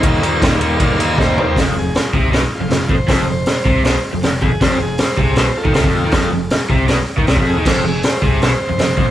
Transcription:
<<
  \new Staff \with { instrumentName = "Transistor combo organ" } { \time 4/4 \key ees \lydian \tempo 4 = 158 r2 f''8 ees''8 c''8 <g' c''>8 | r8 aes'8 f'8 ees'4 f'8 <e' f'>8 <b' c''>8~ | <b' c''>8 c''2 r4 <g' aes'>8 | c''8 <g' aes'>8 c''8 <g' aes'>8 c''8 <f' a'>4.~ |
<f' a'>8 r2. <g' aes'>8 | c''8 <g' aes'>8 c''8 <g' aes'>8 c''8 c''4. | }
  \new Staff \with { instrumentName = "Overdriven electric guitar" } { \clef bass \time 4/4 \key ees \lydian <ees g bes ees'>8 <ees g bes ees'>8 <ees g bes ees'>8 <ees g bes ees'>8 <ees g bes ees'>8 <ees g bes ees'>8 <ees g bes ees'>8 <ees g bes ees'>8 | f,8 f,8 r8 c8 b,16 r8 f,16 f,8 f,16 r16 | f,8 f,8 r8 c8 b,16 r8 f,16 f,8 f,16 r16 | f,8 f,8 r8 c8 b,16 r8 ees16 c16 f,8 ees16 |
f,8 f,8 r8 c8 b,16 r8 ees16 c16 f,8 ees16 | f,8 f,8 r8 c8 b,16 r8 f,16 f,8 f,16 r16 | }
  \new Staff \with { instrumentName = "Picked electric bass" } { \clef bass \time 4/4 \key ees \lydian ees,4 ees,8 ees,8 ees,4 ees,4 | f,,8 f,,8 r8 c,8 b,,16 r8 f,,16 f,,8 f,,16 r16 | f,,8 f,,8 r8 c,8 b,,16 r8 f,,16 f,,8 f,,16 r16 | f,,8 f,,8 r8 c,8 b,,16 r8 ees,16 c,16 f,,8 ees,16 |
f,,8 f,,8 r8 c,8 b,,16 r8 ees,16 c,16 f,,8 ees,16 | f,,8 f,,8 r8 c,8 b,,16 r8 f,,16 f,,8 f,,16 r16 | }
  \new DrumStaff \with { instrumentName = "Drums" } \drummode { \time 4/4 <bd cymr>8 cymr8 <bd cymr sn>8 cymr8 <bd cymr>8 cymr8 <bd sn>8 tomfh8 | <hho bd sn>4 <hho sn>8 bd8 <hho sn>4 <hho sn>8 bd8 | <hho bd sn>4 <hho sn>8 bd8 <hho sn>4 <hho sn>8 bd8 | <hho bd sn>4 <hho sn>8 bd8 <hho sn>8. bd16 <hho sn>16 bd8. |
<hho bd sn>4 <hho sn>8 bd8 <hho sn>8. bd16 <hho sn>16 bd8. | <cymc bd sn>4 <hho sn>8 bd8 <hho sn>4 <hho sn>8 bd8 | }
>>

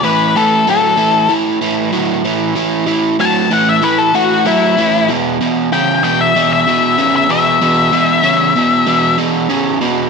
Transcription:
<<
  \new Staff \with { instrumentName = "Lead electric guitar" } { \time 4/4 \key a \lydian \tempo 4 = 95 b'8 a'8 a'4 r2 | r4 a''8 fis''16 e''16 b'16 a'16 fis'8 e'4 | r4 g''8 g''16 e''8 e''4 e''16 e''8~ | e''2~ e''8 r4. | }
  \new Staff \with { instrumentName = "Overdriven electric guitar" } { \clef bass \time 4/4 \key a \lydian <a, e>8 <a, e>8 <a, fis>8 <a, e>8 <a, e>8 <a, e>8 <a, fis>8 <a, e>8 | <a, e>8 <a, e>8 <a, fis>8 <a, e>8 <a, e>8 <a, e>8 <a, fis>8 <a, e>8 | <e, b,>8 <e, b,>8 <e, cis>8 <e, b,>8 <e, b,>8 <e, b,>8 <e, cis>8 <e, b,>8 | <e, b,>8 <e, b,>8 <e, cis>8 <e, b,>8 <e, b,>8 <e, b,>8 <e, cis>8 <e, b,>8 | }
>>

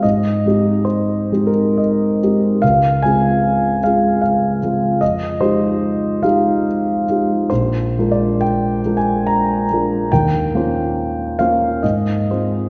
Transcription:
\new Staff \with { instrumentName = "Grand piano" } { \time 3/4 \key aes \major \tempo 4 = 71 << { ees''4 \tuplet 3/2 { c''4 bes'8 } ees''4 | f''8 aes''4 f''8 f''4 | ees''8 c''4 f''8 r4 | \tuplet 3/2 { c''4 d''8 g''4 aes''8 } bes''4 |
g''4. f''8 ees''4 | } \\ { aes,8 <aes c' ees' g'>4 <aes c' ees' g'>4 <aes c' ees' g'>8 | des,8 <aes c' f' aes'>4 <aes c' f' aes'>4 <aes c' f' aes'>8 | f,8 <aes ees' f' g'>4 <aes ees' f' g'>4 <aes ees' f' g'>8 | bes,,8 <aes d' f' bes'>4 <aes d' f' bes'>4 <aes d' f' bes'>8 |
ees,8 <bes des' f' c''>4 <bes des' f' c''>8 aes,8 <aes c' f' c''>8 | } >> }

